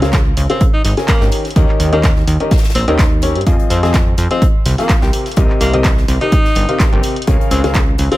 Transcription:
Already playing: C#2
0.02 C#3 C4 C#4 G#4 A#4 F5, snare, closed hi-hat
0.13 kick, snare, clap, closed hi-hat
0.37 C#2, closed hi-hat, open hi-hat
0.50 C#3 C4 C#4 G#4 A#4 F5, closed hi-hat
0.61 kick, closed hi-hat
0.73 D#4
0.84 G#1 D#4, snare, closed hi-hat, open hi-hat
0.97 C#3 C#4 G#4 A#4 G#5, snare, closed hi-hat
1.08 A#3, kick, snare, clap, closed hi-hat
1.21 G#1 D#3 C#4 G4 A#4 G5, snare
1.32 closed hi-hat, open hi-hat
1.45 snare, closed hi-hat
1.50 closed hi-hat
1.56 D#2 D#3 C#4 G4 A#4 D#5, kick, closed hi-hat
1.69 clap
1.80 D#2, closed hi-hat, open hi-hat
1.93 D#3 A#3 C#4 G4 A#4 D#5, closed hi-hat
2.03 A#3, kick, snare, clap, closed hi-hat
2.16 snare
2.27 D#2, closed hi-hat, open hi-hat
2.40 D#3 C#4 G4 A#4 D#5, closed hi-hat
2.51 kick, snare, closed hi-hat
2.58 snare, closed hi-hat
2.63 snare, closed hi-hat
2.70 snare, closed hi-hat
2.75 A#1 C4, closed hi-hat, open hi-hat
2.88 D#2 D#3 C4 C#4 G4 A#4 D#5, closed hi-hat
2.99 kick, snare, clap, closed hi-hat
3.22 C#4 G4 A#4 C#5, closed hi-hat, open hi-hat
3.35 G2, closed hi-hat
3.41 closed hi-hat
3.47 F2 F3 C4 F4 G#4 D#5, kick, closed hi-hat
3.59 closed hi-hat
3.70 F2 C4, closed hi-hat, open hi-hat
3.83 F3 C4 F4 G#4 D#5, snare, closed hi-hat
3.94 kick, snare, clap, closed hi-hat
4.18 F2, closed hi-hat, open hi-hat
4.31 F3 C4 F4 G#4 D#5, closed hi-hat
4.42 kick, closed hi-hat
4.66 C2, snare, closed hi-hat, open hi-hat
4.78 F3 A#3 C4 F4 G#4 F5, snare, closed hi-hat
4.89 kick, snare, clap, closed hi-hat
5.02 C2 C3 C4 G4 A#4 G5, snare
5.13 closed hi-hat, open hi-hat
5.26 snare, closed hi-hat
5.31 closed hi-hat
5.37 C2 C3 C4 G4 A#4 D#5, kick, closed hi-hat
5.50 clap
5.61 C2 A#3, closed hi-hat, open hi-hat
5.74 C3 C4 G4 A#4 D#5, closed hi-hat
5.84 kick, snare, clap, closed hi-hat
5.97 snare
6.08 C2, closed hi-hat, open hi-hat
6.21 C3 C4 D#4 G4 A#4 D#5, closed hi-hat
6.32 kick, closed hi-hat
6.45 snare
6.55 G1, closed hi-hat, open hi-hat
6.69 C3 C4 G4 A#4 F5, closed hi-hat
6.80 kick, snare, clap, closed hi-hat
6.92 G1 C3 C4 G4 A#4 G5
7.03 closed hi-hat, open hi-hat
7.16 closed hi-hat
7.22 closed hi-hat
7.27 C#2 C#3 C#4 G#4 A#4 F5, kick, closed hi-hat
7.41 closed hi-hat
7.51 C#2 C4, closed hi-hat, open hi-hat
7.63 C#3 C4 C#4 G#4 A#4 F5, snare, closed hi-hat
7.74 kick, snare, clap, closed hi-hat
7.98 C#2, closed hi-hat, open hi-hat
8.12 C#3 C4 C#4 G#4 A#4 F5, closed hi-hat

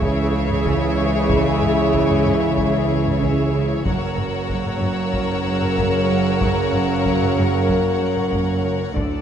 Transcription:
Already playing: C#2 C#3 E3 G#3 E4 G#4 C#5 E5
0.02 C#4, taiko
0.36 C#3
0.50 taiko low-mid
0.66 C#3, taiko
0.99 C#3
1.29 C#3, taiko
1.62 C#4, taiko low-mid
1.94 C#4, taiko
2.10 taiko low-mid
2.26 C#3, taiko low-mid
2.58 C#4, taiko
2.90 C#3
3.06 taiko low-mid
3.21 C#3, taiko
3.53 C#3
3.84 F#1 F#2 C#3 F#3 A#3 C#4 A#4 C#5 F#5 A#5 E6, taiko
4.16 F#3, taiko low-mid
4.50 F#3, taiko
4.66 taiko low-mid
4.82 F#2, taiko low-mid
5.13 F#3, taiko
5.46 F#2
5.62 taiko low-mid
5.78 F#2, taiko
6.11 F#2
6.41 F#2, taiko
6.73 F#3, taiko low-mid
7.05 F#3, taiko
7.21 taiko low-mid
7.38 F#2, taiko low-mid
7.69 F#3, taiko
8.01 F#2
8.17 taiko low-mid
8.32 F#2, taiko
8.65 F#2
8.95 D2 A2 D3 F#3 A3 D4 A4 D5 F#5 D6 E6, taiko

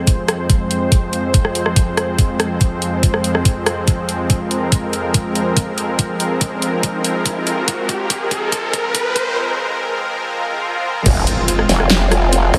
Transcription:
Already playing: F2 F3 G#3 C4 C5
0.07 kick, closed hi-hat
0.28 cross-stick, closed hi-hat
0.50 kick, closed hi-hat
0.71 closed hi-hat
0.92 kick, closed hi-hat
1.13 closed hi-hat
1.34 kick, closed hi-hat
1.45 cross-stick
1.55 closed hi-hat
1.66 cross-stick
1.76 kick, closed hi-hat
1.97 cross-stick, closed hi-hat
2.19 kick, closed hi-hat
2.40 cross-stick, closed hi-hat
2.61 kick, closed hi-hat
2.82 closed hi-hat
3.03 kick, closed hi-hat
3.14 cross-stick
3.24 closed hi-hat
3.35 cross-stick
3.45 kick, closed hi-hat
3.66 cross-stick, closed hi-hat
3.88 kick, closed hi-hat
4.09 closed hi-hat
4.30 A#4, kick, closed hi-hat, riser
4.51 closed hi-hat
4.72 kick, closed hi-hat
4.93 closed hi-hat
5.14 kick, closed hi-hat
5.35 closed hi-hat
5.57 kick, closed hi-hat
5.78 closed hi-hat
5.99 kick, closed hi-hat
6.20 closed hi-hat
6.41 kick, closed hi-hat
6.62 closed hi-hat
6.83 kick, closed hi-hat
7.04 closed hi-hat
7.26 kick, closed hi-hat
7.47 closed hi-hat
7.68 kick, closed hi-hat
7.89 kick, closed hi-hat
8.10 kick, closed hi-hat
8.31 kick, closed hi-hat
8.52 kick, closed hi-hat
8.73 kick, closed hi-hat
8.95 kick, closed hi-hat
9.16 kick, closed hi-hat
10.21 swell
11.06 F1 G#3 C4 F4, kick, closed hi-hat, crash, impact
11.27 closed hi-hat
11.48 closed hi-hat
11.59 cross-stick
11.69 F1, snare, open hi-hat
11.80 cross-stick
11.90 snare, clap, closed hi-hat
12.12 cross-stick, closed hi-hat
12.33 closed hi-hat
12.54 F1, kick, cross-stick, open hi-hat

